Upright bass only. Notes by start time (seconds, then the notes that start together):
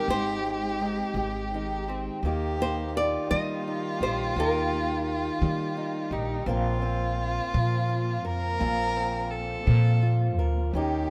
0.08 G#1
1.14 G#1
2.23 D#2
3.31 D#3
4.01 A#1
4.36 D#2
5.42 D#3
6.11 A#1
6.46 A#1
7.54 A#2
8.25 F2
8.61 A#1
9.67 A#2
10.38 D2
10.73 D#2